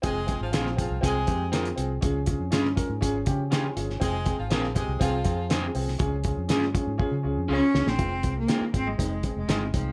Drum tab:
HH |x-x-x-x-x-x-xxx-|x-x-x-x-x-x-x-x-|x-x-x-x-x-x-x-o-|x-x-x-x---------|
SD |----oo------o---|----oo------o--o|----oo------o--o|----oo--------oo|
BD |o-o---o-o-o-----|o-o---o-o-o-----|o-o---o-o-o-----|o-o---o-o-------|

HH |x-x-x-x-x-x-x-x-|
SD |----o-------o---|
BD |o-o---o-o-o---o-|